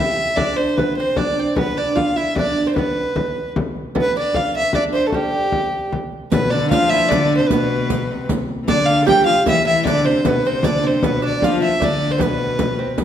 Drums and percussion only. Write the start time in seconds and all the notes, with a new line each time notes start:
0.18 frame drum
0.37 frame drum
0.78 frame drum
0.98 frame drum
1.16 frame drum
1.37 frame drum
1.56 frame drum
1.97 frame drum
2.17 frame drum
2.36 frame drum
2.56 frame drum
2.76 frame drum
3.16 frame drum
3.36 frame drum
3.56 frame drum
3.76 frame drum
3.96 frame drum
4.34 frame drum
4.55 frame drum
4.73 frame drum
4.94 frame drum
5.12 frame drum
5.52 frame drum
5.92 frame drum
6.12 frame drum
6.32 riq, frame drum
6.71 riq, frame drum
6.92 frame drum
7.11 riq, frame drum
7.30 frame drum
7.50 riq, frame drum
7.90 riq, frame drum
8.10 frame drum
8.29 riq, frame drum
8.49 frame drum
8.68 riq, frame drum
9.08 riq, frame drum
9.27 frame drum
9.46 riq, frame drum
9.65 frame drum
9.85 riq, frame drum
10.07 riq
10.25 riq, frame drum
10.44 riq, frame drum
10.63 riq, frame drum
11.03 riq, frame drum
11.42 riq, frame drum
11.62 frame drum
11.81 riq, frame drum
12.01 frame drum
12.20 riq, frame drum
12.59 riq, frame drum
12.79 frame drum
12.98 riq, frame drum